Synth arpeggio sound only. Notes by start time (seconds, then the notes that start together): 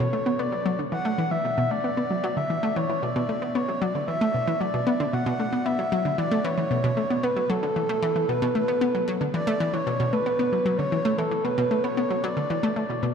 0.13 A3
0.26 B3
0.39 B3
0.52 F#3
0.66 F#3
0.79 D3
0.92 E3
1.05 A3
1.18 E3
1.31 E3
1.45 B2
1.58 B2
1.71 A3
1.84 B3
1.97 B3
2.10 F#3
2.24 F#3
2.37 D3
2.50 E3
2.63 A3
2.76 E3
2.89 E3
3.02 B2
3.16 B2
3.29 A3
3.42 B3
3.55 B3
3.68 F#3
3.82 F#3
3.95 D3
4.08 E3
4.21 A3
4.34 B2
4.47 E3
4.61 F#3
4.74 B2
4.87 B3
5.00 D3
5.13 B2
5.26 B2
5.39 A3
5.53 B3
5.66 B3
5.79 F#3
5.92 F#3
6.05 D3
6.18 E3
6.31 A3
6.44 E3
6.58 E3
6.71 B2
6.84 B2
6.97 A3
7.10 B3
7.23 B3
7.37 F#3
7.50 F#3
7.63 D3
7.76 E3
7.89 A3
8.02 E3
8.16 E3
8.29 B2
8.42 B2
8.55 A3
8.68 B3
8.81 B3
8.95 F#3
9.08 F#3
9.21 D3
9.34 E3
9.47 A3
9.60 E3
9.73 E3
9.87 B2
10.00 B2
10.13 A3
10.26 B3
10.39 B3
10.53 F#3
10.66 F#3
10.79 D3
10.92 E3
11.05 A3
11.18 E3
11.31 E3
11.45 B2
11.58 B2
11.71 A3
11.84 B3
11.97 B3
12.11 F#3
12.24 F#3
12.37 D3
12.50 E3
12.63 A3
12.76 A3
12.90 B2
13.03 B2